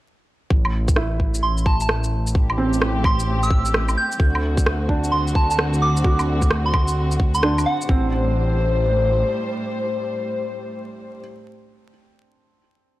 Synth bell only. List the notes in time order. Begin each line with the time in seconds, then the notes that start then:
1.43 C6
1.66 A5
1.82 A5
3.06 C6
3.43 E6
3.97 G6
5.12 C6
5.36 A5
5.51 A5
5.82 D6
6.66 C6
7.34 C6
7.66 F#5